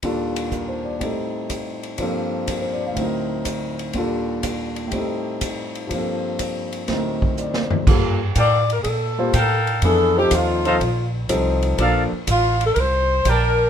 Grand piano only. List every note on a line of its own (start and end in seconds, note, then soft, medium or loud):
0.03 1.01 D#2 soft
0.03 1.02 A#2 soft
0.03 0.98 G3 soft
0.03 1.02 D4 soft
0.03 1.02 F4 soft
0.03 1.02 A4 soft
0.53 0.84 A#4 soft
0.68 0.94 C5 soft
0.85 1.11 D5 soft
0.99 1.98 A2 soft
0.99 1.99 G3 soft
0.99 1.99 C4 soft
0.99 2.00 D#4 soft
1.04 2.01 A4 soft
1.98 2.97 G2 soft
1.98 2.97 F3 soft
1.98 2.98 A#3 soft
1.98 2.97 C4 soft
2.02 2.99 A4 soft
2.50 2.73 A#4 soft
2.62 2.83 C5 soft
2.73 2.88 D5 soft
2.86 3.03 F5 soft
2.93 3.93 D2 soft
2.93 3.94 A2 soft
2.97 3.95 F#3 soft
2.97 3.96 C4 soft
3.01 3.97 D#4 soft
3.01 3.99 A#4 medium
3.94 4.93 D#2 soft
3.94 4.93 A#2 soft
3.94 4.88 G3 soft
3.94 4.94 D4 soft
3.94 4.94 F4 soft
3.98 4.95 A4 soft
4.87 5.88 A2 soft
4.87 5.90 G3 soft
4.93 5.91 C4 soft
4.93 5.93 D#4 soft
4.98 5.94 A4 soft
5.87 6.87 G2 soft
5.87 6.88 F3 soft
5.92 6.90 A#3 soft
5.92 6.89 C4 soft
5.98 6.93 A4 soft
6.88 7.87 D2 soft
6.88 7.87 A2 soft
6.88 7.87 F#3 soft
6.88 7.88 C4 soft
6.88 7.89 D#4 soft
6.93 7.89 A#4 soft
7.40 7.77 D5 soft
7.63 7.97 C5 soft
7.87 8.17 G3 medium
7.87 8.18 A#3 soft
7.87 8.18 F4 soft
7.87 8.18 A4 medium
9.18 9.33 G3 medium
9.18 9.33 A#3 medium
9.18 9.33 F4 soft
9.18 9.33 C5 medium
9.84 10.14 E3 medium
9.84 10.14 B3 medium
9.84 10.14 D4 soft
9.84 10.14 G#4 medium
10.17 10.59 F3 medium
10.17 10.60 C4 medium
10.17 10.60 D#4 soft
10.17 10.60 A4 medium
10.65 10.80 F3 medium
10.65 10.80 C4 medium
10.65 10.80 D#4 medium
10.65 10.80 A4 medium
11.29 11.77 F3 medium
11.29 11.79 C4 medium
11.29 11.79 D#4 medium
11.29 11.79 A4 medium
11.79 12.09 F3 medium
11.79 12.09 A#3 medium
11.79 12.10 D4 soft
11.79 12.10 A4 medium